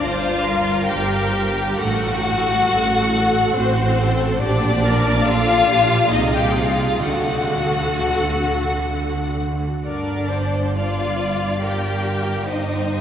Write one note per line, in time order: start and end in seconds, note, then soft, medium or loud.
0.01 0.81 G1 medium
0.01 0.81 G2 medium
0.01 0.90 F4 medium
0.01 0.46 C5 medium
0.01 0.91 F5 medium
0.46 1.79 A#4 medium
0.89 1.69 G1 medium
0.89 1.69 G2 medium
0.89 1.77 G4 medium
0.89 1.79 G5 medium
1.79 2.59 A1 medium
1.79 2.60 A2 medium
1.79 3.55 F#4 medium
1.79 2.24 A4 medium
1.79 3.52 F#5 medium
2.25 3.53 A4 medium
2.70 3.46 A1 medium
2.70 3.46 A2 medium
3.55 4.30 A1 medium
3.55 4.31 A2 medium
3.55 4.41 C4 medium
3.55 3.98 F#4 medium
3.55 4.41 C5 medium
3.99 4.41 A4 medium
4.40 6.08 A#1 medium
4.40 6.08 A#2 medium
4.40 5.24 D4 medium
4.40 4.83 G4 medium
4.40 5.24 D5 medium
4.85 5.26 A#4 medium
5.26 6.13 F4 medium
5.26 5.69 A4 medium
5.26 6.13 F5 loud
5.70 6.12 G4 medium
6.12 7.03 C2 medium
6.12 7.04 C3 medium
6.12 6.35 D#4 medium
6.12 7.05 G#4 medium
6.12 6.34 D#5 medium
6.35 6.58 G4 medium
6.35 6.57 G5 medium
6.58 7.04 F4 medium
6.58 7.04 F5 medium
7.03 9.62 D2 medium
7.03 9.62 D3 medium
7.03 9.41 F#4 medium
7.03 9.41 A4 medium
7.03 9.37 F#5 medium
9.85 12.45 G1 soft
9.85 12.45 G2 medium
9.85 10.74 D4 medium
9.85 10.30 A#4 medium
9.85 10.73 D5 medium
10.33 10.78 C5 soft
10.77 11.64 F4 medium
10.77 11.62 D5 medium
10.77 11.64 F5 medium
11.64 12.47 G4 soft
11.64 12.50 A#4 soft
11.64 12.50 G5 medium
12.49 13.01 G1 soft
12.49 13.01 G2 soft
12.49 13.01 D#4 medium
12.49 13.01 C5 medium
12.49 13.01 D#5 medium